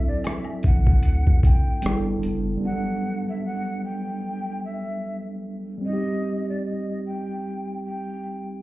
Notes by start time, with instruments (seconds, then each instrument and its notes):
Already playing: tine electric piano F#3 C4 D4 E4 A4
0.07 flute D5
0.24 flute E5, cross-stick, closed hi-hat, high woodblock, shaker
0.45 high woodblock
0.62 sub bass A1, flute F#5, kick, closed hi-hat, shaker
0.87 kick
1.00 closed hi-hat, shaker
1.05 sub bass D2
1.27 kick
1.43 flute G5, kick, closed hi-hat, shaker
1.82 sub bass G1, tine electric piano G3 B3 D4, closed hi-hat, shaker
1.86 tine electric piano E4 G#4, cross-stick
1.96 tine electric piano A4
2.23 sub bass F#1, closed hi-hat, shaker
2.57 tine electric piano G3 B3
2.65 tine electric piano F#3 D4, flute F#5
2.72 tine electric piano A4
3.29 flute E5
3.45 flute F#5
3.84 flute G5
4.64 flute E5
5.78 tine electric piano G3 C4
5.85 flute D#5
5.89 tine electric piano D#4 G4
6.49 flute D5
6.65 flute D#5
7.06 flute G5
7.85 flute G5